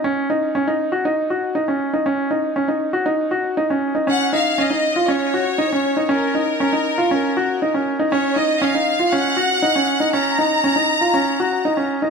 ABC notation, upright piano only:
X:1
M:4/4
L:1/16
Q:1/4=119
K:F#
V:1 name="Upright piano"
C2 D2 C D2 F D2 F2 D C2 D | C2 D2 C D2 F D2 F2 D C2 D | C2 D2 C D2 E C2 F2 D C2 D | C2 D2 C D2 E C2 F2 D C2 D |
C2 D2 C D2 E C2 F2 D C2 D | C2 D2 C D2 E C2 F2 D C2 D |]